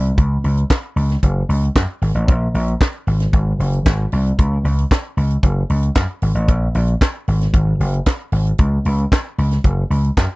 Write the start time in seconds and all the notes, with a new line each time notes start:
Already playing: C2
0.06 closed hi-hat
0.18 C#2, kick, closed hi-hat
0.44 C#2, open hi-hat
0.57 closed hi-hat
0.70 kick, snare, clap, closed hi-hat
0.96 C#2, open hi-hat
1.10 snare, closed hi-hat
1.23 F#1, kick, closed hi-hat
1.49 C#2, open hi-hat
1.63 closed hi-hat
1.75 F#2, kick, snare, clap, closed hi-hat
2.02 G#1, open hi-hat
2.15 A1, closed hi-hat
2.28 A#1, kick, closed hi-hat
2.54 A#1, open hi-hat
2.68 closed hi-hat
2.81 kick, snare, clap, closed hi-hat
3.07 G#1, open hi-hat
3.20 snare, closed hi-hat
3.33 G#1, kick, closed hi-hat
3.59 F#1, open hi-hat
3.73 closed hi-hat
3.85 G#1, kick, snare, clap, closed hi-hat
4.12 C2, open hi-hat
4.27 closed hi-hat
4.39 C#2, kick, closed hi-hat
4.64 C#2, open hi-hat
4.79 closed hi-hat
4.91 kick, snare, clap, closed hi-hat
5.17 C#2, open hi-hat
5.30 closed hi-hat
5.43 F#1, kick, closed hi-hat
5.70 C#2, open hi-hat
5.83 closed hi-hat
5.95 F#2, kick, snare, clap, closed hi-hat
6.22 G#1, open hi-hat
6.35 A1, closed hi-hat
6.48 A#1, kick, closed hi-hat
6.75 A#1, open hi-hat
6.88 closed hi-hat
7.01 kick, snare, clap, closed hi-hat
7.28 G#1, open hi-hat
7.41 snare, closed hi-hat
7.54 G#1, kick, closed hi-hat
7.80 F#1, open hi-hat
7.94 closed hi-hat
8.06 kick, snare, clap, closed hi-hat
8.32 G#1, open hi-hat
8.47 closed hi-hat
8.58 C#2, kick, closed hi-hat
8.85 C#2, open hi-hat
8.98 closed hi-hat
9.12 kick, snare, clap, closed hi-hat
9.38 C#2, open hi-hat
9.51 snare, closed hi-hat
9.64 F#1, kick, closed hi-hat
9.90 C#2, open hi-hat
10.04 closed hi-hat
10.17 F#2, kick, snare, clap, closed hi-hat